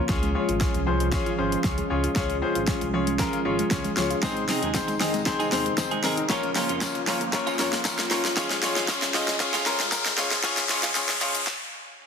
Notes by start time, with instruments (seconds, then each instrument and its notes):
Already playing: analog synth pad F3 F4
0.09 sub bass C#2, synth arpeggio sound F3, analog synth pad G#3 C#4, grand piano C#4 F4 G#4 C#5, kick, snare, closed hi-hat
0.23 synth arpeggio sound G#3, closed hi-hat
0.34 grand piano C#4 F4 G#4 C#5
0.49 sub bass G#1, synth arpeggio sound F4, closed hi-hat
0.60 grand piano C#4 F4 G#4 C#5, synth arpeggio sound C#4, kick, snare, closed hi-hat
0.74 sub bass C2, synth arpeggio sound G#3, closed hi-hat
0.86 synth arpeggio sound F3, grand piano C#4 F4 G#4 C5
1.00 synth arpeggio sound G#3, closed hi-hat
1.12 grand piano C#4 F4 G#4 C#5, synth arpeggio sound C#4, kick, snare, closed hi-hat
1.26 synth arpeggio sound F4, closed hi-hat
1.38 sub bass G#1, grand piano C#4 F4 G#4 C5, synth arpeggio sound C#4
1.52 synth arpeggio sound G#3, closed hi-hat
1.64 sub bass C#2, synth arpeggio sound F3, grand piano C#4 F4 G#4 C#5, kick, snare, closed hi-hat
1.78 synth arpeggio sound G#3, closed hi-hat
1.90 sub bass C#2, grand piano C#4 F4 G#4 C#5
2.04 synth arpeggio sound F4, closed hi-hat
2.16 sub bass C#2, synth arpeggio sound F3, grand piano C#4 F4 G#4 C#5, kick, snare, closed hi-hat
2.30 synth arpeggio sound G#3, closed hi-hat
2.42 grand piano C#4 F4 G#4 C5
2.55 sub bass G#1, synth arpeggio sound F4, closed hi-hat
2.67 grand piano C#4 F4 G#4 C#5, synth arpeggio sound C#4, kick, snare, closed hi-hat
2.81 sub bass C2, synth arpeggio sound G#3, closed hi-hat
2.93 synth arpeggio sound F3, grand piano C#4 F4 G#4 C#5
3.07 synth arpeggio sound G#3, closed hi-hat
3.19 grand piano C#4 F4 G#4 A#4, synth arpeggio sound C#4, kick, snare, closed hi-hat
3.33 synth arpeggio sound F4, closed hi-hat
3.45 sub bass G#1, grand piano C#4 F4 G#4 C#5, synth arpeggio sound C#4
3.59 synth arpeggio sound G#3, closed hi-hat
3.71 sub bass C#2, synth arpeggio sound F3, grand piano C#4 F4 G#4 C#5, kick, snare, closed hi-hat
3.84 synth arpeggio sound G#3, closed hi-hat
3.97 sub bass C#2, grand piano C#4 F4 G#4 C#5, snare
4.11 synth arpeggio sound F4, closed hi-hat
4.22 sub bass G#1, analog synth pad C3 D#3 D#4, synth arpeggio sound D#3, clean electric guitar G#3 C4 D#4 G#4, grand piano C4 D#4 G#4 C5, kick, snare, closed hi-hat, tambourine, riser
4.36 synth arpeggio sound G#3, muted clean electric guitar stroke, closed hi-hat
4.48 clean electric guitar G#3 C4 D#4 G#4, grand piano C4 D#4 G#4 D#5, snare, open hi-hat, tambourine
4.62 sub bass D#2, clean electric guitar G#3 C4 D#4 G#4, synth arpeggio sound D#4, closed hi-hat
4.74 grand piano C4 D#4 G#4 C5, synth arpeggio sound C4, kick, snare, closed hi-hat, tambourine
4.88 sub bass F1, synth arpeggio sound G#3, muted clean electric guitar stroke, closed hi-hat, tambourine
5.00 synth arpeggio sound D#3, clean electric guitar G#3 C4 D#4 G#4, grand piano C4 D#4 G#4 D#5, snare, open hi-hat, tambourine
5.14 synth arpeggio sound G#3, muted clean electric guitar stroke, closed hi-hat, tambourine
5.26 grand piano C4 D#4 G#4 C5, synth arpeggio sound C4, muted clean electric guitar stroke, kick, snare, closed hi-hat
5.39 clean electric guitar G#3 C4 D#4 G#4, synth arpeggio sound D#4, closed hi-hat, tambourine
5.52 sub bass D#2, clean electric guitar G#3 C4 D#4 G#4, grand piano C4 D#4 G#4 C5, synth arpeggio sound C4, snare, open hi-hat, tambourine
5.66 synth arpeggio sound G#3, muted clean electric guitar stroke, closed hi-hat
5.78 sub bass G#1, synth arpeggio sound D#3, grand piano C4 D#4 G#4 C5, muted clean electric guitar stroke, kick, snare, closed hi-hat, tambourine
5.91 synth arpeggio sound G#3, clean electric guitar G#3 C4 D#4 G#4, closed hi-hat
6.03 sub bass G#1, clean electric guitar G#3 C4 D#4 G#4, grand piano C4 D#4 G#4 A#4, snare, open hi-hat, tambourine
6.17 synth arpeggio sound D#4, muted clean electric guitar stroke, closed hi-hat
6.29 sub bass A#1, analog synth pad C#3 F3 A#3 F4, clean electric guitar F3 A#3 C#4 F4, synth arpeggio sound F3, grand piano C#4 F4 A#4 C#5, kick, snare, closed hi-hat, tambourine
6.43 synth arpeggio sound A#3, muted clean electric guitar stroke, closed hi-hat
6.55 clean electric guitar F3 A#3 C#4 F4, grand piano C#4 F4 A#4 C#5, snare, open hi-hat, tambourine
6.69 sub bass F2, clean electric guitar F3 A#3 C#4 F4, synth arpeggio sound F4, closed hi-hat
6.81 grand piano C#4 F4 A#4 C#5, synth arpeggio sound C#4, kick, snare, closed hi-hat, tambourine
6.95 sub bass G1, synth arpeggio sound A#3, muted clean electric guitar stroke, closed hi-hat
7.07 clean electric guitar F3 A#3 C#4 F4, synth arpeggio sound F3, grand piano C#4 F4 A#4 C#5, snare, open hi-hat, tambourine
7.21 synth arpeggio sound A#3, muted clean electric guitar stroke, closed hi-hat
7.33 grand piano C#4 F4 A#4 C#5, synth arpeggio sound C#4, muted clean electric guitar stroke, kick, snare, closed hi-hat
7.47 clean electric guitar F3 A#3 C#4 F4, synth arpeggio sound F4, closed hi-hat, tambourine
7.59 sub bass F2, clean electric guitar F3 A#3 C#4 F4, grand piano C#4 F4 A#4 C#5, synth arpeggio sound C#4, snare, open hi-hat, tambourine
7.73 synth arpeggio sound A#3, muted clean electric guitar stroke, snare, closed hi-hat
7.85 sub bass A#1, synth arpeggio sound F3, grand piano C#4 F4 A#4 C#5, kick, snare, closed hi-hat, tambourine
7.98 synth arpeggio sound A#3, muted clean electric guitar stroke, snare, closed hi-hat
8.10 sub bass A#1, clean electric guitar F3 A#3 C#4 F4, grand piano C#4 F4 A#4 C#5, snare, open hi-hat, tambourine
8.24 synth arpeggio sound F4, muted clean electric guitar stroke, snare, closed hi-hat, tambourine
8.36 sub bass C#2, clean electric guitar F3 G#3 C#4 F4, synth arpeggio sound F3, analog synth pad G#3 C#4, grand piano C#4 F4 G#4 C#5, kick, snare, closed hi-hat, tambourine
8.50 synth arpeggio sound G#3, muted clean electric guitar stroke, snare, closed hi-hat, tambourine
8.62 clean electric guitar F3 G#3 C#4 F4, grand piano C#4 F4 G#4 C#5, snare, open hi-hat, tambourine
8.76 sub bass G#1, clean electric guitar F3 G#3 C#4 F4, synth arpeggio sound F4, snare, closed hi-hat
8.88 grand piano C#4 F4 G#4 C#5, synth arpeggio sound C#4, kick, snare, closed hi-hat, tambourine
9.02 sub bass C2, synth arpeggio sound G#3, muted clean electric guitar stroke, snare, closed hi-hat
9.14 clean electric guitar F3 G#3 C#4 F4, synth arpeggio sound F3, grand piano C#4 F4 G#4 D#5, snare, open hi-hat, tambourine
9.28 synth arpeggio sound G#3, muted clean electric guitar stroke, snare, closed hi-hat, tambourine
9.40 grand piano C#4 F4 G#4 C#5, synth arpeggio sound C#4, muted clean electric guitar stroke, kick, snare, closed hi-hat
9.53 clean electric guitar F3 G#3 C#4 F4, synth arpeggio sound F4, snare, closed hi-hat, tambourine
9.65 sub bass G#1, clean electric guitar F3 G#3 C#4 F4, grand piano C#4 F4 G#4 A#4, synth arpeggio sound C#4, snare, open hi-hat, tambourine
9.79 synth arpeggio sound G#3, muted clean electric guitar stroke, snare, closed hi-hat
9.92 sub bass C#2, synth arpeggio sound F3, grand piano C#4 F4 G#4 A#4, kick, snare, closed hi-hat, tambourine
10.05 synth arpeggio sound G#3, muted clean electric guitar stroke, snare, closed hi-hat
10.17 sub bass C#2, clean electric guitar F3 G#3 C#4 F4, grand piano C#4 F4 G#4 C#5, snare, open hi-hat, tambourine
10.31 synth arpeggio sound F4, muted clean electric guitar stroke, snare, closed hi-hat
10.43 sub bass C#2, clean electric guitar F3 G#3 C#4 F4, synth arpeggio sound F3, grand piano C#4 F4 G#4 C#5, kick, snare, closed hi-hat, tambourine, shaker
10.57 synth arpeggio sound G#3, muted clean electric guitar stroke, snare, closed hi-hat, tambourine, shaker
10.69 clean electric guitar F3 G#3 C#4 F4, grand piano C#4 F4 G#4 C#5, snare, open hi-hat, tambourine, shaker
10.83 sub bass G#1, clean electric guitar F3 G#3 C#4 F4, synth arpeggio sound F4, snare, closed hi-hat, shaker
10.95 grand piano C#4 F4 G#4 C#5, synth arpeggio sound C#4, snare, closed hi-hat, tambourine, shaker
11.09 sub bass C2, synth arpeggio sound G#3, muted clean electric guitar stroke, snare, closed hi-hat, shaker
11.21 clean electric guitar F3 G#3 C#4 F4, synth arpeggio sound F3, grand piano C#4 F4 G#4 C#5, open hi-hat, tambourine, shaker
11.34 synth arpeggio sound G#3, muted clean electric guitar stroke, closed hi-hat, tambourine, shaker
11.47 kick, snare